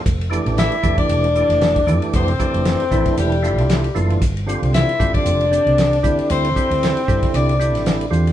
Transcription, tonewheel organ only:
X:1
M:4/4
L:1/8
Q:"Swing 16ths" 1/4=115
K:F
V:1 name="Tonewheel organ"
z [E,A,DG]2 [E,A,DG]2 [E,A,DG]2 [E,A,DG]- | [E,A,DG] [E,A,DG]2 [E,A,DE]2 [A,DEF]2 [E,A,DF] | z [D,G,CF]2 [D,G,CF]2 [D,G,CD]2 [D,G,CE]- | [D,G,CE] [D,G,CE]2 [D,G,CE]2 [D,G,CE]2 [D,G,CF] |]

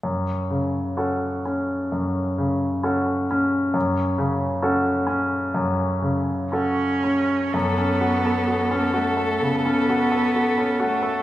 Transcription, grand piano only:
X:1
M:4/4
L:1/16
Q:1/4=65
K:F#m
V:1 name="Grand piano"
F,,2 C,2 [CFA]2 C2 F,,2 C,2 [CFA]2 C2 | F,,2 C,2 [CFA]2 C2 F,,2 C,2 [CFA]2 C2 | F,, C F A F C F A C, C F A F C F A |]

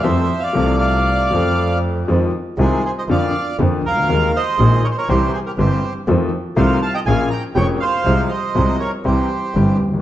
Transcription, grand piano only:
X:1
M:4/4
L:1/16
Q:1/4=120
K:F
V:1 name="Grand piano" clef=bass
[F,,F,A,CA]2 z2 [C,,C,F,A,CA]6 [F,,F,A,CA]6 | [K:Fm] [F,,E,F,A,CF]2 z2 [C,,C,E,A,CF]2 z2 [F,,=D,F,B,F]2 z2 [F,,D,F,B,F]2 z/2 C,,/2 _D,,/2 =D,,/2 | [E,,E,A,B,A]2 z2 [B,,,B,,E,A,B,A]2 z2 [C,,C,=E,G,CG]2 z2 [G,,,G,,E,G,CG]2 z2 | [F,,E,F,=A,CF]2 z2 [C,,C,E,A,CF]2 z2 [B,,,B,,F,B,D_A]2 z2 [F,,,F,,F,B,DA]2 z2 |
[C,,C,F,A,CA]2 z2 [C,,C,F,A,CA]2 z2 [C,,C,=E,G,CG]2 z2 [G,,,G,,E,G,CG]2 z/2 =D,,/2 _E,,/2 z/2 |]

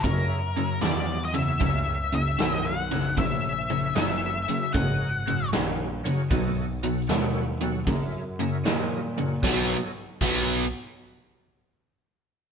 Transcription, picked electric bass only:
X:1
M:4/4
L:1/8
Q:"Swing" 1/4=77
K:B
V:1 name="Picked electric bass" clef=bass
F,,2 E,,2 C,,2 B,,,2 | A,,,2 F,,, z G,,,2 A,,, z | B,,,2 D,,2 F,,2 A,,2 | B,,, z B,,, z4 z |]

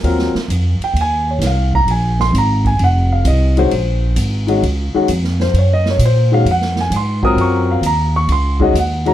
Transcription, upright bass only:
X:1
M:4/4
L:1/8
Q:"Swing" 1/4=131
K:Ebdor
V:1 name="Upright bass" clef=bass
E,, z F,, z E,,2 C,,2 | B,,,2 A,,,2 F,,,2 C,,2 | B,,,2 A,,,2 D,, z F,,2 | G,,2 B,,2 F,,2 A,,2 |
G,,2 E,,2 D,,2 E,,2 |]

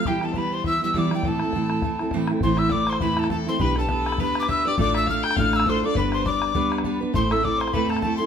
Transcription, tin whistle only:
X:1
M:4/4
L:1/8
Q:"Swing" 1/4=203
K:Am
V:1 name="Tin whistle"
g a b c' e' e' d' g | a6 z2 | c' e' d' c' b a a c' | b a2 b b d' e' d' |
d' e' f' g' f' e' c' d' | b c' d'3 z3 | c' e' d' c' b a a c' |]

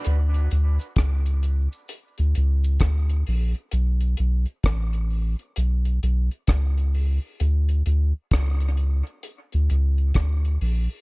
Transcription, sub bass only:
X:1
M:4/4
L:1/16
Q:"Swing 16ths" 1/4=65
K:Amix
V:1 name="Sub bass" clef=bass
D,,2 D,, z C,,3 z2 D,, C,,2 D,,2 ^A,,, z | B,,,2 B,,, z A,,,3 z B,,,2 B,,, z C,,3 z | D,,2 D,, z C,,3 z2 D,, C,,2 D,,2 ^A,,, z |]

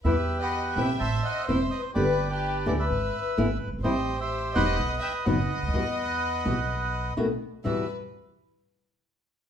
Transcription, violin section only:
X:1
M:4/4
L:1/16
Q:1/4=126
K:Em
V:1 name="Violin section"
B3 ^d3 e2 e2 d2 c2 B2 | B3 G3 B B6- B z2 | c3 c3 ^d4 e2 d4- | ^d12 z4 |
B2 z12 z2 |]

